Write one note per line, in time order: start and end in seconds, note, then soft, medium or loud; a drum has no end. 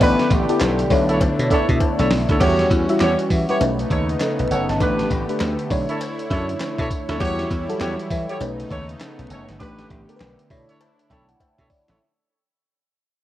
0.00 0.15 A1 loud
0.00 2.38 D3 medium
0.00 0.88 A3 medium
0.00 0.88 B3 medium
0.00 0.35 B3 medium
0.00 0.28 D4 medium
0.00 0.35 E4 medium
0.00 0.89 G4 medium
0.00 0.28 G4 medium
0.00 0.35 G4 medium
0.00 0.35 A4 medium
0.00 0.29 B4 loud
0.00 0.35 D5 loud
0.00 kick loud
0.00 closed hi-hat medium
0.00 tambourine medium
0.00 cowbell medium
0.19 snare medium
0.19 closed hi-hat medium
0.31 0.45 A1 loud
0.31 kick loud
0.31 closed hi-hat medium
0.31 tambourine medium
0.48 0.89 B3 medium
0.48 0.90 E4 medium
0.48 0.90 G4 medium
0.48 0.90 A4 medium
0.48 0.91 D5 medium
0.48 closed hi-hat medium
0.60 0.84 B1 loud
0.60 snare loud
0.60 clap loud
0.60 closed hi-hat medium
0.60 tambourine loud
0.60 cowbell medium
0.79 closed hi-hat medium
0.90 1.28 B1 loud
0.90 2.39 A3 medium
0.90 1.41 B3 loud
0.90 1.41 D4 medium
0.90 2.39 D4 medium
0.90 2.39 E4 loud
0.90 1.41 E4 medium
0.90 1.41 A4 medium
0.90 1.42 C#5 loud
0.90 kick loud
0.90 open hi-hat medium
0.90 tambourine medium
1.08 1.18 D4 medium
1.08 1.18 E4 medium
1.08 1.18 A4 medium
1.08 1.18 C#5 medium
1.08 closed hi-hat medium
1.21 kick medium
1.21 closed hi-hat medium
1.21 cowbell medium
1.39 1.48 B2 medium
1.39 closed hi-hat medium
1.50 2.19 B3 medium
1.50 1.65 D4 medium
1.50 2.19 D4 medium
1.50 1.65 E4 medium
1.50 2.19 E4 medium
1.50 1.65 A4 medium
1.50 2.20 A4 medium
1.50 1.65 C#5 medium
1.50 2.20 D5 loud
1.50 kick medium
1.50 closed hi-hat medium
1.69 1.78 B2 loud
1.69 kick medium
1.69 closed hi-hat medium
1.80 kick medium
1.80 closed hi-hat medium
1.80 cowbell medium
1.98 2.08 B1 medium
1.98 2.08 D4 medium
1.98 2.08 E4 medium
1.98 2.08 A4 medium
1.98 2.08 C#5 medium
1.98 closed hi-hat medium
2.10 2.25 B1 loud
2.10 snare loud
2.10 open hi-hat medium
2.28 2.38 D2 medium
2.28 2.38 D4 medium
2.28 2.38 E4 medium
2.28 2.38 A4 medium
2.28 2.38 C#5 medium
2.28 kick loud
2.28 closed hi-hat medium
2.40 2.64 E2 loud
2.40 3.59 E3 medium
2.40 2.75 G3 medium
2.40 3.59 G3 medium
2.40 3.59 C#4 medium
2.40 2.75 E4 medium
2.40 3.59 F#4 medium
2.40 2.68 F#4 loud
2.40 2.75 F#4 medium
2.40 2.69 G4 medium
2.40 2.69 C#5 loud
2.40 2.75 C#5 loud
2.40 kick loud
2.40 closed hi-hat medium
2.40 crash loud
2.40 tambourine medium
2.40 cowbell medium
2.59 snare medium
2.59 closed hi-hat medium
2.71 2.85 E2 medium
2.71 kick loud
2.71 closed hi-hat medium
2.71 tambourine medium
2.89 3.30 G3 medium
2.89 3.30 E4 medium
2.89 3.30 F#4 medium
2.89 3.31 E5 medium
2.89 closed hi-hat medium
3.00 3.15 E2 medium
3.00 3.15 F#4 medium
3.00 3.15 G4 medium
3.00 3.15 C#5 medium
3.00 snare loud
3.00 clap loud
3.00 closed hi-hat medium
3.00 tambourine medium
3.00 cowbell medium
3.19 closed hi-hat medium
3.30 3.44 E3 medium
3.30 kick loud
3.30 open hi-hat medium
3.30 tambourine medium
3.48 3.60 G3 medium
3.48 3.61 E4 medium
3.48 3.58 F#4 medium
3.48 3.61 F#4 medium
3.48 3.58 G4 medium
3.48 3.60 B4 medium
3.48 3.58 C#5 medium
3.48 closed hi-hat soft
3.60 3.84 B1 loud
3.60 4.79 C#3 medium
3.60 4.58 A3 medium
3.60 7.17 A3 medium
3.60 5.68 B3 medium
3.60 4.58 C#4 medium
3.60 4.79 D#4 medium
3.60 4.58 D#4 medium
3.60 4.21 B4 loud
3.60 closed hi-hat medium
3.60 tambourine medium
3.60 cowbell medium
3.79 closed hi-hat medium
3.90 4.13 D#2 loud
3.90 4.05 D#4 medium
3.90 4.05 A4 medium
3.90 4.05 C#5 medium
3.90 kick loud
3.90 closed hi-hat medium
4.09 closed hi-hat soft
4.20 4.50 A4 medium
4.20 4.49 D#5 medium
4.20 snare loud
4.20 clap medium
4.20 closed hi-hat medium
4.20 tambourine medium
4.20 cowbell medium
4.39 4.48 B1 medium
4.39 closed hi-hat medium
4.50 4.65 F#1 medium
4.50 4.65 D#4 medium
4.50 4.65 A4 medium
4.50 4.65 C#5 medium
4.50 4.68 C#5 medium
4.50 4.68 F#5 medium
4.50 closed hi-hat medium
4.50 tambourine medium
4.69 4.78 G1 medium
4.69 4.98 D#5 medium
4.69 4.97 A5 medium
4.69 snare medium
4.69 closed hi-hat medium
4.80 5.03 A1 loud
4.80 7.18 D3 medium
4.80 5.15 A3 medium
4.80 5.08 D4 medium
4.80 5.15 D4 medium
4.80 5.08 G4 medium
4.80 5.15 G4 medium
4.80 5.70 G4 medium
4.80 5.09 B4 loud
4.80 5.15 B4 medium
4.80 kick loud
4.80 closed hi-hat medium
4.80 tambourine medium
4.80 cowbell medium
4.99 snare medium
4.99 closed hi-hat medium
5.10 5.25 A1 medium
5.10 kick medium
5.10 closed hi-hat medium
5.10 tambourine medium
5.29 5.69 A3 medium
5.29 5.69 D4 medium
5.29 5.71 G4 medium
5.29 5.71 B4 medium
5.29 closed hi-hat medium
5.40 5.55 D2 loud
5.40 snare loud
5.40 clap medium
5.40 closed hi-hat medium
5.40 tambourine medium
5.40 cowbell medium
5.59 closed hi-hat medium
5.70 5.85 B1 loud
5.70 6.68 A3 medium
5.70 6.68 D4 medium
5.70 6.68 E4 medium
5.70 7.19 E4 loud
5.70 8.38 C#5 medium
5.70 6.68 C#5 loud
5.70 kick loud
5.70 open hi-hat medium
5.70 tambourine medium
5.88 5.98 D4 medium
5.88 5.98 E4 medium
5.88 5.98 A4 medium
5.88 5.98 C#5 medium
5.88 closed hi-hat medium
6.01 closed hi-hat medium
6.01 tambourine medium
6.01 cowbell medium
6.19 closed hi-hat medium
6.30 6.53 F#2 medium
6.30 6.45 D4 medium
6.30 6.45 E4 medium
6.30 6.45 A4 medium
6.30 6.45 C#5 loud
6.30 kick loud
6.30 closed hi-hat medium
6.49 closed hi-hat medium
6.60 snare loud
6.60 clap medium
6.60 closed hi-hat medium
6.60 tambourine loud
6.60 cowbell medium
6.78 6.88 B2 loud
6.78 6.88 D4 medium
6.78 6.88 E4 medium
6.78 6.88 A4 medium
6.78 6.88 C#5 medium
6.78 kick medium
6.78 closed hi-hat medium
6.91 kick loud
6.91 closed hi-hat medium
6.91 tambourine medium
7.08 7.18 D2 medium
7.08 7.18 D4 medium
7.08 7.18 E4 medium
7.08 7.18 A4 medium
7.08 7.18 C#5 medium
7.08 snare medium
7.08 closed hi-hat medium
7.20 7.43 E2 loud
7.20 8.39 E3 medium
7.20 7.54 G3 medium
7.20 8.39 G3 medium
7.20 8.39 E4 medium
7.20 7.55 E4 medium
7.20 7.48 F#4 loud
7.20 7.55 F#4 medium
7.20 7.48 G4 medium
7.20 7.48 C#5 loud
7.20 7.55 C#5 loud
7.20 kick loud
7.20 closed hi-hat medium
7.20 tambourine medium
7.20 cowbell medium
7.39 snare medium
7.39 closed hi-hat medium
7.50 7.65 E2 loud
7.50 kick medium
7.50 closed hi-hat medium
7.50 tambourine medium
7.68 7.74 F#3 medium
7.68 8.10 E4 medium
7.68 7.80 F#4 medium
7.68 7.81 A4 medium
7.68 closed hi-hat medium
7.75 8.13 G3 medium
7.80 7.94 E2 loud
7.80 7.95 F#4 medium
7.80 7.95 G4 medium
7.80 7.95 C#5 medium
7.80 8.09 C#5 medium
7.80 8.09 G5 medium
7.80 snare loud
7.80 clap medium
7.80 closed hi-hat medium
7.80 tambourine medium
7.80 cowbell medium
7.99 closed hi-hat medium
8.10 8.25 E3 medium
8.10 8.28 B4 medium
8.10 8.28 E5 medium
8.10 kick loud
8.10 open hi-hat medium
8.10 tambourine medium
8.28 8.38 F#4 medium
8.28 8.38 G4 medium
8.28 8.58 G4 medium
8.28 8.38 C#5 medium
8.28 8.58 C#5 medium
8.28 closed hi-hat medium
8.40 8.63 B1 loud
8.40 9.59 C#3 medium
8.40 9.38 A3 medium
8.40 11.97 A3 medium
8.40 10.48 B3 medium
8.40 9.38 C#4 medium
8.40 9.59 D#4 medium
8.40 9.38 D#4 medium
8.40 9.38 B4 medium
8.40 closed hi-hat medium
8.40 tambourine medium
8.40 cowbell medium
8.60 closed hi-hat medium
8.69 8.93 D#2 medium
8.69 8.85 D#4 medium
8.69 8.85 A4 medium
8.69 8.85 C#5 medium
8.69 kick loud
8.69 closed hi-hat medium
8.89 closed hi-hat medium
9.00 snare loud
9.00 clap medium
9.00 closed hi-hat medium
9.00 tambourine medium
9.00 cowbell medium
9.19 9.28 B1 loud
9.19 closed hi-hat soft
9.30 9.44 F#1 medium
9.30 9.45 D#4 medium
9.30 9.45 A4 medium
9.30 9.45 C#5 medium
9.30 closed hi-hat medium
9.30 tambourine medium
9.49 9.58 G1 medium
9.49 snare medium
9.49 closed hi-hat medium
9.60 9.83 A1 loud
9.60 11.98 D3 medium
9.60 9.94 A3 medium
9.60 9.88 D4 medium
9.60 9.95 D4 medium
9.60 10.49 G4 medium
9.60 9.88 G4 medium
9.60 9.95 G4 medium
9.60 9.88 B4 loud
9.60 9.95 B4 medium
9.60 kick loud
9.60 closed hi-hat medium
9.60 cowbell medium
9.79 snare medium
9.79 closed hi-hat medium
9.90 10.04 A1 loud
9.90 kick medium
9.90 closed hi-hat medium
10.09 10.49 A3 medium
10.09 10.49 D4 medium
10.09 10.51 G4 medium
10.09 10.14 A#4 medium
10.09 closed hi-hat medium
10.16 10.34 B1 medium
10.16 10.54 B4 medium
10.16 clap medium
10.21 snare loud
10.21 closed hi-hat medium
10.21 cowbell medium
10.39 closed hi-hat medium
10.50 10.64 B2 medium
10.50 11.48 A3 medium
10.50 11.99 D4 medium
10.50 11.48 D4 medium
10.50 11.99 E4 medium
10.50 11.48 E4 medium
10.50 11.48 C#5 loud
10.50 10.78 B5 medium
10.50 kick loud
10.50 open hi-hat medium
10.68 10.78 D4 medium
10.68 10.78 E4 medium
10.68 10.78 A4 medium
10.68 10.78 C#5 medium
10.68 closed hi-hat medium
10.81 11.08 A5 medium
10.81 closed hi-hat medium
10.81 cowbell medium
10.99 closed hi-hat medium
11.09 11.33 B1 medium
11.09 11.25 D4 medium
11.09 11.25 E4 medium
11.09 11.25 A4 medium
11.09 11.25 C#5 medium
11.09 11.28 G5 medium
11.09 kick medium
11.09 closed hi-hat medium
11.29 11.39 F#5 medium
11.29 closed hi-hat soft
11.40 11.68 E5 medium
11.40 kick medium
11.40 closed hi-hat medium
11.40 cowbell medium
11.58 11.68 B2 loud
11.58 11.68 D4 medium
11.58 11.68 E4 medium
11.58 11.68 A4 medium
11.58 11.68 C#5 medium
11.58 kick medium
11.58 closed hi-hat soft
11.70 11.98 D5 medium
11.70 kick loud
11.70 open hi-hat medium
11.88 11.98 A1 medium
11.88 11.98 D4 medium
11.88 11.98 E4 medium
11.88 11.98 A4 medium
11.88 11.98 C#5 medium
11.88 snare medium
11.88 closed hi-hat medium